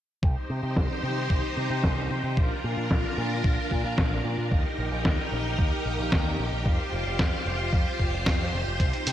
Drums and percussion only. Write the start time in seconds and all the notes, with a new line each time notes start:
0.23 kick
0.76 kick, snare
1.30 kick
1.84 kick, snare
2.37 kick
2.91 kick, snare
3.44 kick
3.71 kick
3.98 kick, snare
4.51 kick
5.05 kick, snare
5.59 kick
6.12 kick, snare
6.66 kick
7.19 kick, snare
7.73 kick
8.00 kick
8.26 kick, snare
8.80 kick, closed hi-hat
8.93 closed hi-hat
9.07 closed hi-hat